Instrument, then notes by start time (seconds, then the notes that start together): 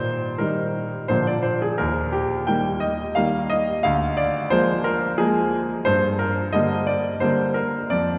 grand piano
Already playing: A#2 C5
0.38 D#3 G3 D#4 A#4
1.08 A#2 D3 F3 A#3 C5
1.27 D5
1.43 C5
1.62 G#4
1.78 D#2 A#4
2.12 G4
2.47 D#3 G3 A#3 G5
2.80 D#5
3.15 D#3 G3 A#3 F5
3.50 D#5
3.83 D2 F5
4.17 D5
4.50 F3 G#3 A#3 C5
4.84 A#4
5.18 F3 G#3 A#3 G#4
5.85 G2 C5
6.19 A#4
6.53 D3 G3 A#3 D#5
6.87 D5
7.20 D3 G3 A#3 C5
7.54 A#4
7.90 F2 D5